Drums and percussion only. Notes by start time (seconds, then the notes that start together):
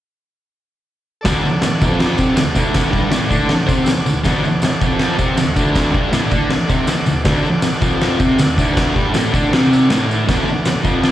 1.25 kick, snare, tambourine, crash
1.46 tambourine
1.62 snare, tambourine, crash
1.81 kick, tambourine
1.99 snare, tambourine, crash
2.18 kick, tambourine
2.37 snare, tambourine, crash
2.55 kick, tambourine
2.74 kick, snare, tambourine, crash
2.93 kick, tambourine
3.12 snare, tambourine, crash
3.31 kick, tambourine
3.49 snare, tambourine, crash
3.69 kick, tambourine
3.86 snare, tambourine, crash
4.06 tambourine
4.24 kick, snare, tambourine, crash
4.44 tambourine
4.62 snare, tambourine, crash
4.81 kick, tambourine
4.99 snare, tambourine, crash
5.19 kick, tambourine
5.37 snare, tambourine, crash
5.56 kick, tambourine
5.75 kick, snare, tambourine, crash
5.94 kick, tambourine
6.13 snare, tambourine, crash
6.31 kick, tambourine
6.51 snare, crash
6.70 kick, tambourine
6.87 snare, tambourine, crash
7.06 tambourine
7.25 kick, snare, tambourine, crash
7.45 tambourine
7.62 snare, tambourine, crash
7.82 kick, tambourine
8.01 snare, tambourine, crash
8.19 kick, tambourine
8.38 snare, tambourine, crash
8.58 kick, tambourine
8.77 kick, snare, tambourine, crash
8.96 kick, tambourine
9.14 snare, tambourine, crash
9.34 kick, tambourine
9.53 snare, tambourine, crash
9.73 tambourine
9.90 snare, tambourine, crash
10.11 tambourine
10.29 kick, snare, tambourine, crash
10.48 tambourine
10.65 snare, tambourine, crash
10.85 kick, tambourine
11.04 snare, tambourine, crash